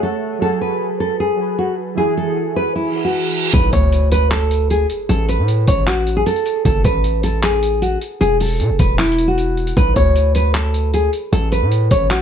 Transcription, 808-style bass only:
3.54 3.72 B1 loud
3.73 4.86 D2 loud
5.09 5.40 A1 loud
5.39 5.66 A2 loud
5.68 6.24 A1 loud
6.65 6.84 F#1 loud
6.85 7.98 A1 loud
8.21 8.62 E1 loud
8.60 8.71 B2 loud
8.70 8.79 E1 medium
8.79 9.73 E1 loud
9.77 9.96 B1 loud
9.96 11.09 D2 loud
11.33 11.63 A1 loud
11.62 11.90 A2 loud
11.91 12.22 A1 loud

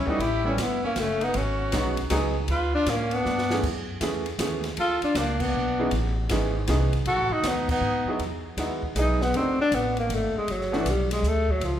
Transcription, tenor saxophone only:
0.09 0.22 D#4 medium
0.21 0.46 E4 medium
0.48 0.63 C#4 medium
0.62 0.85 B3 medium
0.86 1.01 A#3 medium
0.99 1.25 A3 medium
1.24 1.39 B3 medium
1.37 2.12 C#4 medium
2.51 2.73 F4 medium
2.75 2.91 D4 medium
2.89 3.15 A#3 medium
3.14 3.64 B3 medium
4.80 5.02 F4 medium
5.04 5.19 D4 medium
5.18 5.43 A#3 medium
5.41 5.92 B3 medium
7.07 7.34 F#4 medium
7.32 7.49 D#4 medium
7.47 7.71 B3 medium
7.71 8.12 B3 medium
8.99 9.24 D#4 medium
9.22 9.38 B3 medium
9.36 9.60 C4 medium
9.61 9.76 D4 loud
9.74 9.98 B3 medium
9.99 10.15 A#3 medium
10.14 10.37 A3 medium
10.37 10.52 G#3 medium
10.51 10.77 F#3 medium
10.75 10.91 E3 medium
10.90 11.11 G3 medium
11.12 11.29 G#3 medium
11.27 11.52 A3 medium
11.51 11.67 F#3 medium
11.65 11.80 F3 medium

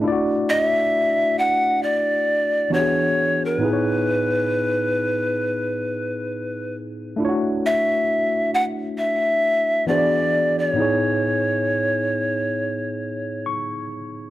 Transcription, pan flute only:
0.49 0.66 D#5 loud
0.66 1.40 E5 loud
1.39 1.84 F#5 loud
1.83 2.75 D5 loud
2.74 3.47 C#5 loud
3.45 3.59 A#4 medium
3.59 6.76 B4 medium
7.66 8.51 E5 loud
8.54 8.64 F#5 loud
8.98 9.89 E5 loud
9.88 10.60 D5 loud
10.59 13.46 C#5 medium

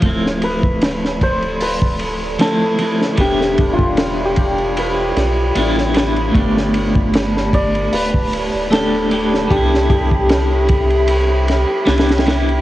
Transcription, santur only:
0.44 1.29 B4 loud
1.23 1.68 C5 loud
1.62 4.35 B4 loud
2.41 5.33 A4 medium
3.20 4.25 G4 medium
3.73 7.09 F4 medium
4.25 7.39 G4 medium
4.78 7.51 B4 medium
7.55 10.01 D5 loud
7.94 10.67 B4 medium
8.72 11.64 A4 medium
9.51 9.89 G4 medium
9.90 12.61 G4 medium

